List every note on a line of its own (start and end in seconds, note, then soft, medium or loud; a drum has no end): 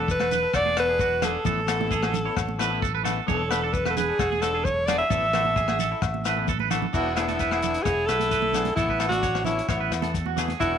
0.00 0.45 E1 loud
0.00 0.12 D4 soft
0.00 0.11 A4 medium
0.00 0.19 A4 medium
0.08 0.56 B4 medium
0.08 kick medium
0.08 shekere medium
0.20 0.31 A4 medium
0.20 cross-stick medium
0.20 high conga medium
0.20 low agogo medium
0.31 0.53 B4 medium
0.31 closed hi-hat soft
0.31 low conga medium
0.31 shekere medium
0.43 0.56 A4 soft
0.53 1.36 E1 medium
0.53 0.65 A4 medium
0.53 0.77 D5 loud
0.53 kick medium
0.53 cross-stick medium
0.53 low agogo medium
0.53 shekere medium
0.66 0.76 G#4 medium
0.66 high conga medium
0.77 0.89 B3 medium
0.77 0.88 A4 medium
0.77 0.87 A4 medium
0.77 1.26 B4 loud
0.77 cross-stick medium
0.77 closed hi-hat soft
0.77 low agogo medium
0.88 1.00 G#4 medium
0.88 1.02 A4 medium
0.88 muted clean electric guitar stroke soft
0.99 1.22 F#4 medium
0.99 kick medium
0.99 shekere medium
1.22 1.37 B3 medium
1.22 1.37 D4 medium
1.22 1.44 G#4 medium
1.22 1.38 A4 medium
1.22 3.06 A4 medium
1.22 cross-stick medium
1.22 closed hi-hat medium
1.22 low conga medium
1.22 low agogo medium
1.22 shekere medium
1.45 2.27 A1 loud
1.45 1.59 E3 medium
1.45 1.60 B3 medium
1.45 1.60 E4 medium
1.45 1.67 A4 medium
1.45 1.60 A4 medium
1.45 kick medium
1.45 low conga medium
1.45 shekere loud
1.67 1.79 E3 medium
1.67 1.79 B3 medium
1.67 1.79 E4 medium
1.67 1.90 A4 medium
1.67 1.77 A4 medium
1.67 cross-stick medium
1.67 closed hi-hat medium
1.67 low agogo medium
1.67 shekere medium
1.79 1.94 B3 medium
1.79 1.93 E4 medium
1.79 1.93 A4 medium
1.79 high conga medium
1.91 2.02 G#4 medium
1.91 kick medium
1.91 shekere medium
2.03 2.14 G#4 medium
2.03 cross-stick medium
2.03 high conga medium
2.03 low agogo medium
2.14 closed hi-hat soft
2.14 low conga medium
2.14 shekere medium
2.25 2.40 B3 soft
2.25 2.39 E4 soft
2.25 2.39 A4 medium
2.25 2.47 C#5 medium
2.36 3.19 A1 medium
2.36 kick medium
2.36 cross-stick medium
2.36 low agogo medium
2.36 shekere medium
2.49 high conga medium
2.59 2.71 E3 medium
2.59 2.71 B3 medium
2.59 2.71 E4 medium
2.59 2.69 A4 medium
2.59 2.81 B4 medium
2.59 cross-stick medium
2.59 closed hi-hat soft
2.59 low agogo medium
2.59 shekere medium
2.70 2.85 B3 medium
2.70 2.85 E4 medium
2.70 2.84 A4 medium
2.82 2.94 A4 medium
2.82 kick medium
2.82 shekere medium
2.95 3.04 B4 medium
3.03 3.18 E3 medium
3.03 3.19 B3 medium
3.03 3.19 E4 medium
3.03 3.27 A4 medium
3.03 3.20 A4 medium
3.03 closed hi-hat soft
3.03 low conga medium
3.03 low agogo medium
3.03 shekere medium
3.27 4.10 E1 loud
3.27 3.41 B3 medium
3.27 3.42 D4 medium
3.27 3.74 A4 medium
3.27 3.42 A4 medium
3.27 3.50 C#5 medium
3.27 kick medium
3.27 low conga medium
3.27 shekere medium
3.50 3.62 B3 medium
3.50 3.63 D4 medium
3.50 3.61 A4 medium
3.50 3.62 B4 medium
3.50 cross-stick medium
3.50 closed hi-hat medium
3.50 low agogo medium
3.50 shekere medium
3.62 3.77 D4 soft
3.62 3.76 A4 medium
3.62 3.85 A4 medium
3.73 3.89 B4 medium
3.73 kick medium
3.73 shekere medium
3.85 3.96 B4 medium
3.85 cross-stick medium
3.85 high conga medium
3.85 low agogo medium
3.90 3.98 A4 medium
3.96 4.43 G#4 loud
3.96 4.19 B4 medium
3.96 closed hi-hat soft
3.96 low conga medium
3.96 shekere medium
4.08 4.23 D4 soft
4.08 4.22 A4 medium
4.19 5.01 E1 medium
4.19 4.31 A4 medium
4.19 kick medium
4.19 cross-stick medium
4.19 low agogo medium
4.19 shekere medium
4.32 4.42 G#4 medium
4.32 high conga medium
4.41 4.54 B3 medium
4.41 4.54 D4 medium
4.41 4.66 A4 medium
4.41 4.54 A4 medium
4.41 4.52 A4 medium
4.41 cross-stick medium
4.41 closed hi-hat soft
4.41 low agogo medium
4.41 shekere medium
4.53 4.68 D4 soft
4.53 4.65 G#4 medium
4.53 4.67 A4 medium
4.64 4.88 C#5 medium
4.64 kick medium
4.64 shekere medium
4.86 5.02 B3 medium
4.86 5.02 D4 medium
4.86 5.10 G#4 medium
4.86 5.03 A4 medium
4.86 4.98 D5 medium
4.86 cross-stick medium
4.86 closed hi-hat medium
4.86 low conga medium
4.86 low agogo medium
4.86 shekere medium
4.98 6.43 E5 loud
5.10 5.93 A1 loud
5.10 5.24 E3 medium
5.10 5.25 B3 medium
5.10 5.25 E4 medium
5.10 5.32 A4 loud
5.10 5.25 A4 medium
5.10 kick medium
5.10 low conga medium
5.10 shekere medium
5.33 5.45 E3 medium
5.33 5.45 B3 medium
5.33 5.46 E4 medium
5.33 5.55 A4 medium
5.33 5.45 A4 medium
5.33 cross-stick medium
5.33 closed hi-hat soft
5.33 low conga medium
5.33 low agogo medium
5.45 5.60 B3 soft
5.45 5.59 A4 medium
5.45 muted clean electric guitar stroke medium
5.45 high conga medium
5.56 5.68 G#4 medium
5.56 kick medium
5.56 shekere medium
5.68 5.79 G#4 medium
5.68 cross-stick medium
5.68 high conga medium
5.68 low agogo medium
5.79 5.91 A4 medium
5.79 closed hi-hat soft
5.79 low conga medium
5.79 shekere medium
5.91 6.05 E4 medium
5.91 6.05 A4 medium
5.91 muted clean electric guitar stroke medium
6.02 6.84 A1 medium
6.02 kick medium
6.02 cross-stick medium
6.02 low agogo medium
6.02 shekere medium
6.14 high conga medium
6.25 6.37 E3 medium
6.25 6.37 E4 medium
6.25 6.36 A4 medium
6.25 6.47 B4 medium
6.25 cross-stick medium
6.25 closed hi-hat soft
6.25 low agogo medium
6.25 shekere medium
6.36 6.51 B3 medium
6.36 6.51 E4 medium
6.36 6.50 A4 medium
6.36 high conga medium
6.47 6.60 A4 medium
6.47 kick medium
6.47 high conga medium
6.47 shekere medium
6.59 6.70 B4 medium
6.59 high conga medium
6.70 6.85 E3 medium
6.70 6.85 B3 medium
6.70 6.86 E4 medium
6.70 6.93 A4 medium
6.70 6.86 A4 medium
6.70 closed hi-hat medium
6.70 low conga medium
6.70 low agogo medium
6.70 shekere medium
6.82 low conga medium
6.93 7.76 E1 medium
6.93 7.07 B3 medium
6.93 7.16 B3 medium
6.93 7.08 D4 medium
6.93 7.15 E4 medium
6.93 7.16 F#4 medium
6.93 7.08 A4 medium
6.93 kick medium
6.93 crash medium
6.93 shekere medium
7.15 7.28 B3 soft
7.15 7.86 B3 medium
7.15 7.29 D4 medium
7.15 7.84 E4 medium
7.15 7.28 G#4 medium
7.15 7.26 A4 medium
7.15 cross-stick medium
7.15 closed hi-hat medium
7.15 low agogo medium
7.15 shekere medium
7.28 7.43 D4 soft
7.28 7.41 A4 medium
7.28 7.39 A4 medium
7.28 closed hi-hat soft
7.28 high conga medium
7.39 7.51 B4 medium
7.39 kick medium
7.39 closed hi-hat soft
7.39 shekere medium
7.51 7.62 G#4 medium
7.51 cross-stick medium
7.51 low agogo medium
7.62 7.76 B3 medium
7.62 7.77 D4 medium
7.62 7.77 A4 medium
7.62 muted clean electric guitar stroke medium
7.62 closed hi-hat soft
7.62 low conga medium
7.62 shekere medium
7.74 closed hi-hat soft
7.83 8.06 E1 medium
7.83 8.07 E4 medium
7.83 8.08 G#4 medium
7.83 8.07 C#5 medium
7.83 kick medium
7.83 cross-stick medium
7.83 closed hi-hat soft
7.83 low agogo medium
7.83 shekere medium
8.06 8.70 B1 medium
8.06 8.75 E4 medium
8.06 8.75 A4 loud
8.06 8.30 B4 medium
8.06 cross-stick medium
8.06 closed hi-hat medium
8.06 low agogo medium
8.06 shekere medium
8.20 8.33 A4 soft
8.20 closed hi-hat medium
8.20 high conga medium
8.31 8.53 B4 medium
8.31 kick medium
8.31 closed hi-hat medium
8.31 shekere medium
8.42 high conga medium
8.53 8.68 B3 medium
8.53 8.68 D4 medium
8.53 8.77 G#4 medium
8.53 cross-stick medium
8.53 closed hi-hat soft
8.53 low conga medium
8.53 low agogo medium
8.53 shekere medium
8.65 closed hi-hat soft
8.65 high conga medium
8.76 9.59 A1 medium
8.76 8.91 E3 medium
8.76 9.09 B3 medium
8.76 8.91 B3 medium
8.76 9.08 E4 medium
8.76 8.91 E4 medium
8.76 8.88 A4 medium
8.76 8.91 A4 medium
8.76 kick medium
8.76 closed hi-hat soft
8.76 shekere medium
8.89 9.00 B4 medium
8.89 kick medium
8.99 9.11 E3 soft
8.99 9.12 B3 medium
8.99 9.12 E4 medium
8.99 9.22 A4 medium
8.99 9.10 A4 soft
8.99 cross-stick medium
8.99 closed hi-hat soft
8.99 low agogo medium
8.99 shekere medium
9.09 9.43 D4 medium
9.09 9.42 F#4 medium
9.09 9.25 A4 medium
9.09 closed hi-hat soft
9.09 high conga medium
9.13 9.26 B3 soft
9.23 9.45 C#5 medium
9.23 kick medium
9.23 closed hi-hat soft
9.23 shekere medium
9.35 cross-stick medium
9.35 low agogo medium
9.44 9.59 E3 medium
9.44 9.60 B3 medium
9.44 9.67 C#4 medium
9.44 9.67 E4 medium
9.44 9.60 E4 medium
9.44 9.60 A4 medium
9.44 closed hi-hat soft
9.44 low conga medium
9.44 shekere medium
9.59 closed hi-hat soft
9.68 9.89 A1 loud
9.68 10.12 B3 medium
9.68 10.12 E4 medium
9.68 9.80 C#5 medium
9.68 kick medium
9.68 cross-stick medium
9.68 closed hi-hat soft
9.68 low agogo medium
9.68 shekere medium
9.80 9.91 B4 medium
9.90 10.53 E2 medium
9.90 cross-stick medium
9.90 closed hi-hat soft
9.90 low agogo medium
9.90 shekere medium
10.02 10.17 B3 soft
10.02 10.17 E4 soft
10.02 10.16 A4 soft
10.02 10.25 A4 medium
10.02 closed hi-hat soft
10.02 high conga medium
10.14 kick medium
10.14 closed hi-hat soft
10.14 shekere medium
10.26 10.37 F#4 medium
10.26 high conga medium
10.36 10.51 E3 medium
10.36 10.51 B3 medium
10.36 10.52 E4 medium
10.36 10.60 G#4 medium
10.36 10.52 A4 medium
10.36 closed hi-hat soft
10.36 low conga medium
10.36 low agogo medium
10.36 shekere medium
10.48 closed hi-hat soft
10.48 high conga medium
10.60 10.78 E1 medium
10.60 10.74 B3 medium
10.60 10.78 B3 medium
10.60 10.75 D4 medium
10.60 10.78 E4 medium
10.60 10.78 F#4 medium
10.60 10.75 A4 medium
10.60 kick medium
10.60 closed hi-hat soft
10.60 shekere medium